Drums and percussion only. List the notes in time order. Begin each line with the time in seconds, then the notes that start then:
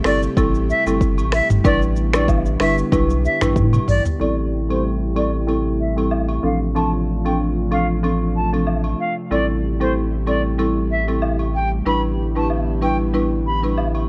0.04 finger snap, cross-stick, open hi-hat, high agogo, shaker
0.23 shaker
0.37 kick, high agogo, shaker
0.55 shaker
0.70 shaker
0.87 high agogo, shaker
1.01 kick, shaker
1.18 high agogo, shaker
1.32 finger snap, cross-stick, open hi-hat, shaker
1.50 mid tom, shaker
1.65 kick, high agogo, shaker
1.82 shaker
1.96 shaker
2.13 finger snap, cross-stick, high agogo, shaker
2.28 kick, low woodblock, shaker
2.46 shaker
2.60 finger snap, cross-stick, open hi-hat, high agogo, shaker
2.78 shaker
2.92 kick, high agogo, shaker
3.10 shaker
3.25 shaker
3.42 finger snap, cross-stick, mid tom, high agogo, shaker
3.56 kick, high tom, shaker
3.73 mid tom, high agogo, shaker
3.88 mid tom, open hi-hat, shaker
4.05 floor tom, shaker
4.21 high agogo
4.70 high agogo
5.16 high agogo
5.49 high agogo
5.98 high agogo
6.11 low woodblock
6.29 high agogo
6.76 high agogo
7.26 high agogo
7.72 high agogo
8.04 high agogo
8.54 high agogo
8.67 low woodblock
8.84 high agogo
9.32 high agogo
9.81 high agogo
10.27 high agogo
10.59 high agogo
11.08 high agogo
11.22 low woodblock
11.39 high agogo
11.87 high agogo
12.36 high agogo
12.50 low woodblock
12.82 high agogo
13.15 high agogo
13.64 high agogo
13.78 low woodblock
13.95 high agogo